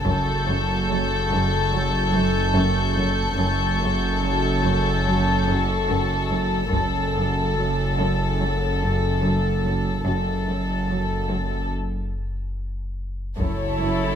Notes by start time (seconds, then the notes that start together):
0.06 F#1 F#2 A4 C#6 G6, taiko
0.48 F#2
0.89 F#3
1.30 F#2
1.71 F#3
2.14 F#2
2.56 F#2
2.97 F#2
3.38 F#1 F#2 A4
3.81 F#2
4.23 F#3
4.65 F#2
5.06 F#3
5.48 F#2
5.90 F#2
6.31 F#2
6.73 F#1 F#2 A4, taiko
7.15 F#2
7.57 F#3
7.99 F#2
8.41 F#3
8.82 F#2
9.24 F#2
9.65 F#2
10.06 F#1 F#2 A4
10.48 F#2
10.89 F#3
11.31 F#2
13.39 F#1 F#2 E4 A4 C#5, taiko
13.81 F#2